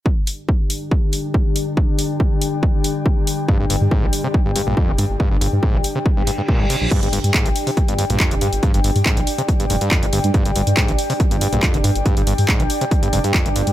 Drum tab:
CC |----------------|----------------|----------------|----------------|
HH |--o---o---o---o-|--o---o---o---o-|--o---o---o---o-|--o---o---o---o-|
CP |----------------|----------------|----------------|----------------|
BD |o---o---o---o---|o---o---o---o---|o---o---o---o---|o---o---o---o---|

CC |x---------------|----------------|----------------|----------------|
HH |xxoxxxooxxoxxxox|xxooxxoxxxoxxxox|xxoxxxooxxoxxxox|xxooxxoxxxoxxxox|
CP |----x-------x---|----x-------x---|----x-------x---|----x-------x---|
BD |o---o---o---o---|o---o---o---o---|o---o---o---o---|o---o---o---o---|